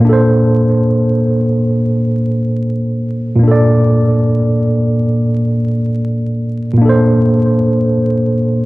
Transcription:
Already playing: A#2
0.01 A#3 D4
0.09 A4 C5
3.36 A#2 A#3
3.43 D4
3.48 A4 D5
6.73 A#2
6.78 A#3 D4
6.86 A4 C5

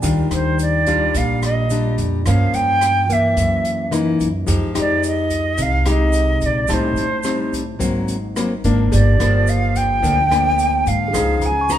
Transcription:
Already playing: D5
0.02 D#2 D#3 G3 D4 F4 G5, kick, closed hi-hat, shaker
0.31 D#2 C5, cross-stick, closed hi-hat, shaker
0.59 D5, closed hi-hat, shaker
0.86 G3 D4 F4, kick, closed hi-hat, shaker
1.14 A#1 A#2 F5, kick, closed hi-hat, shaker
1.42 D#5, cross-stick, closed hi-hat, shaker
1.70 G3 D4 F4, closed hi-hat, shaker
1.98 F2, kick, closed hi-hat, shaker
2.26 G2 F3 A#3 C#4 F5, kick, cross-stick, closed hi-hat, shaker
2.53 G2 G5, closed hi-hat, shaker
2.81 cross-stick, closed hi-hat, shaker
3.09 E3 A#3 E5, kick, closed hi-hat, shaker
3.37 F#2, kick, closed hi-hat, shaker
3.65 closed hi-hat, shaker
3.91 E3 A#3 D#4, cross-stick, closed hi-hat, shaker
4.20 F#2, kick, closed hi-hat, shaker
4.47 F2 F3 G#3 D#4 G4, kick, closed hi-hat, shaker
4.74 F2 G#3 D#4 G4, cross-stick, closed hi-hat, shaker
4.80 D5
5.03 closed hi-hat, shaker
5.08 D#5
5.30 kick, closed hi-hat, shaker
5.58 C2 C3, kick, closed hi-hat, shaker
5.62 F5
5.86 G#3 D#4 G4, cross-stick, closed hi-hat, shaker
5.91 D#5
6.13 closed hi-hat, shaker
6.41 A#1, kick, closed hi-hat, shaker
6.46 D5
6.68 A1 A2 G3 C4 D#4 A5, kick, cross-stick, closed hi-hat, shaker
6.74 C5
6.96 A1, closed hi-hat, shaker
7.23 G3 C4 D#4, cross-stick, closed hi-hat, shaker
7.53 kick, closed hi-hat, shaker
7.79 G#1 G#2 F#3 A#3 C4, kick, closed hi-hat, shaker
8.08 closed hi-hat, shaker
8.36 F#3 A#3 C4, cross-stick, closed hi-hat, shaker
8.64 G#1 F3 A#3 D4, kick, closed hi-hat, shaker
8.92 G1 G2 G4 D5, kick, closed hi-hat, shaker
9.20 G1 F3 A#3 D4, cross-stick, closed hi-hat, shaker
9.47 F5, closed hi-hat, shaker
9.75 G5, kick, closed hi-hat, shaker
10.02 D2 D3 F3 A#3 D4, kick, closed hi-hat, shaker
10.30 F3 A#3 D4, cross-stick, closed hi-hat, shaker
10.59 closed hi-hat, shaker
10.86 G#2 F5, kick, closed hi-hat, shaker
11.08 G4
11.13 C#2 C#3 F3 B3 D#4 G#4, kick, cross-stick, closed hi-hat, shaker
11.41 C#2 A#5, closed hi-hat, shaker
11.46 G#5
11.61 C#6
11.69 F3 B3 D#4 A#5, cross-stick, closed hi-hat, shaker

